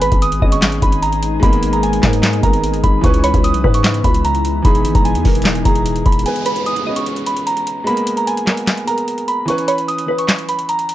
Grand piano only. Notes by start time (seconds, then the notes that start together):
Already playing: G#3 B3 B4
0.40 G#3 B3
0.44 C#4
1.40 G#3 B3
1.44 A#3
2.01 G#3 B3
2.05 A#4
2.41 G#3 B3
2.45 A#4
3.01 E3 C#4
3.06 B4
3.62 E3 C#4
3.66 B4
4.62 E3 D#4
4.67 G#4
5.23 E3 D#4
5.27 A#4
5.63 E3 D#4
5.67 G#4
6.23 G#3 B3
6.28 B4
6.84 G#3 B3
6.89 C#4
7.84 G#3 B3
7.88 A#3
8.45 G#3 B3
8.49 A#4
8.85 G#3 B3
8.89 A#4
9.46 E3 C#4
9.50 B4
10.06 E3 C#4
10.11 B4